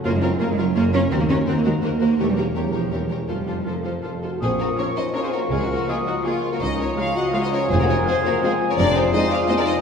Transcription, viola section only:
X:1
M:3/4
L:1/8
Q:1/4=166
K:Bbm
V:1 name="Viola section"
F F F F F F | G G G G G G | =G G G G G G | F F F F F F |
z2 [DF]2 [DF]2 | z2 [B,F]2 [B,F]2 | z2 [A,F]2 [A,F]2 | z2 [A,F]2 [A,F]2 |
[K:Fdor] z2 [A,C]2 [A,C]2 |]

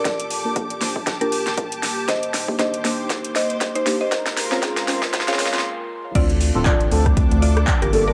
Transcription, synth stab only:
X:1
M:4/4
L:1/16
Q:"Swing 16ths" 1/4=118
K:Dphr
V:1 name="Synth stab"
z3 [B,DFB] [B,DFA] z [B,DFc]3 [B,DFB]6- [B,DFB] | z3 [B,DEG] [B,DEG]2 [B,DEG]2 z6 [B,DEG] z | z3 [C_DFB] [DF_A] z [CDFc]3 [CDFA]2 [CDFA] z4 | [CDFA]3 [CDFA] [DA]2 [CDFA]2 z6 [B,DFA] z |]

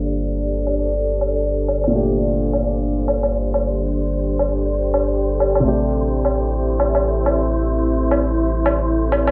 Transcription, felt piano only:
X:1
M:4/4
L:1/8
Q:"Swing 16ths" 1/4=129
K:Gdor
V:1 name="Felt piano"
[B,,A,G]8 | [B,,A,G]8- | [B,,A,G]8 | [C,A,G]8- |
[C,A,G]8 |]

